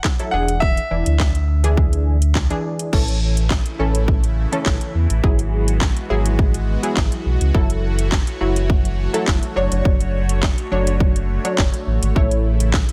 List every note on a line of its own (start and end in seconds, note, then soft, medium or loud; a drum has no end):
0.04 kick loud
0.04 snare medium
0.04 clap loud
0.19 0.33 F#3 medium
0.19 0.33 E4 medium
0.19 0.33 A4 medium
0.19 closed hi-hat soft
0.31 0.78 E1 loud
0.31 0.80 E3 medium
0.31 0.80 D4 medium
0.31 0.80 G#4 medium
0.31 0.62 F#5 loud
0.48 closed hi-hat medium
0.60 2.30 E5 loud
0.60 kick loud
0.77 closed hi-hat soft
0.91 1.03 E1 loud
0.91 1.36 E3 medium
0.91 1.36 D4 medium
0.91 1.36 E4 medium
1.06 2.50 D2 loud
1.06 closed hi-hat medium
1.20 kick loud
1.20 snare medium
1.20 clap loud
1.35 closed hi-hat medium
1.64 2.17 E3 loud
1.64 2.17 D4 medium
1.64 2.17 G#4 loud
1.64 closed hi-hat medium
1.77 kick loud
1.93 closed hi-hat medium
2.22 closed hi-hat medium
2.35 kick loud
2.35 snare medium
2.35 clap loud
2.50 2.92 E3 loud
2.50 2.93 D4 loud
2.50 2.93 G#4 loud
2.50 closed hi-hat soft
2.79 closed hi-hat medium
2.93 3.59 A1 loud
2.93 5.21 C#3 medium
2.93 3.46 E3 medium
2.93 7.51 E3 medium
2.93 5.21 A3 medium
2.93 3.46 C#4 medium
2.93 5.21 E4 medium
2.93 3.46 A4 loud
2.93 kick loud
2.93 crash medium
3.08 closed hi-hat soft
3.37 closed hi-hat medium
3.50 kick loud
3.50 snare medium
3.50 clap loud
3.66 closed hi-hat medium
3.79 4.46 A1 loud
3.79 4.24 E3 medium
3.79 4.24 C#4 medium
3.79 4.25 A4 loud
3.95 closed hi-hat medium
4.08 kick loud
4.24 closed hi-hat medium
4.52 4.96 E3 loud
4.52 4.96 C#4 medium
4.52 4.96 A4 loud
4.52 closed hi-hat medium
4.66 4.78 A1 loud
4.66 kick loud
4.66 snare medium
4.66 clap loud
4.81 closed hi-hat soft
4.95 5.07 E2 medium
5.10 5.20 A1 medium
5.10 closed hi-hat medium
5.23 5.90 G#1 loud
5.23 5.77 F#3 medium
5.23 7.52 G#3 medium
5.23 7.52 B3 medium
5.23 5.77 E4 medium
5.23 12.12 F#4 medium
5.23 5.77 G#4 loud
5.23 kick loud
5.39 closed hi-hat soft
5.68 closed hi-hat medium
5.81 kick loud
5.81 snare medium
5.81 clap loud
5.97 closed hi-hat medium
6.10 6.77 G#1 loud
6.10 6.55 F#3 medium
6.10 6.55 E4 medium
6.10 6.55 G#4 loud
6.26 closed hi-hat medium
6.39 kick loud
6.54 closed hi-hat medium
6.83 7.26 F#3 medium
6.83 7.26 E4 medium
6.83 7.27 G#4 medium
6.83 closed hi-hat medium
6.97 7.09 G#1 loud
6.97 kick loud
6.97 snare medium
6.97 clap loud
7.12 closed hi-hat soft
7.26 7.37 B1 medium
7.41 7.51 C#2 medium
7.41 closed hi-hat medium
7.54 8.21 F#1 loud
7.54 9.54 E3 medium
7.54 8.08 F#3 medium
7.54 12.92 A3 medium
7.54 8.08 E4 medium
7.54 8.08 A4 loud
7.54 12.12 C#5 medium
7.54 kick loud
7.70 closed hi-hat medium
7.99 closed hi-hat medium
8.12 kick loud
8.12 snare medium
8.12 clap loud
8.27 closed hi-hat medium
8.41 9.08 F#1 medium
8.41 8.86 F#3 loud
8.41 8.86 E4 medium
8.41 8.86 F#4 loud
8.56 closed hi-hat medium
8.70 kick loud
8.85 closed hi-hat medium
9.14 9.55 F#3 loud
9.14 9.56 E4 medium
9.14 9.56 A4 loud
9.14 closed hi-hat medium
9.28 9.39 F#1 loud
9.28 kick loud
9.28 snare medium
9.28 clap loud
9.43 closed hi-hat soft
9.56 9.68 F#1 medium
9.56 12.13 D3 medium
9.56 10.49 F#3 loud
9.56 10.49 D4 medium
9.56 10.49 C#5 loud
9.72 9.82 F#1 medium
9.72 closed hi-hat medium
9.85 10.52 F#1 loud
9.85 kick loud
10.01 closed hi-hat soft
10.29 closed hi-hat medium
10.43 kick loud
10.43 snare medium
10.43 clap loud
10.58 closed hi-hat medium
10.71 11.38 F#1 loud
10.71 11.17 F#3 medium
10.71 11.17 D4 medium
10.71 11.17 C#5 loud
10.87 closed hi-hat medium
11.00 kick loud
11.16 closed hi-hat medium
11.44 11.88 F#3 medium
11.44 11.88 D4 medium
11.44 11.88 C#5 medium
11.44 closed hi-hat medium
11.58 11.70 F#1 loud
11.58 kick loud
11.58 snare medium
11.58 clap loud
11.74 closed hi-hat soft
11.87 11.99 A1 medium
12.02 12.13 G#1 medium
12.02 closed hi-hat medium
12.16 12.83 A1 loud
12.16 12.92 C#3 medium
12.16 12.92 E3 medium
12.16 12.69 A3 medium
12.16 12.92 E4 medium
12.16 12.69 E4 medium
12.16 12.69 C#5 loud
12.16 kick loud
12.31 closed hi-hat soft
12.60 closed hi-hat medium
12.74 kick loud
12.74 snare medium
12.74 clap loud
12.89 closed hi-hat medium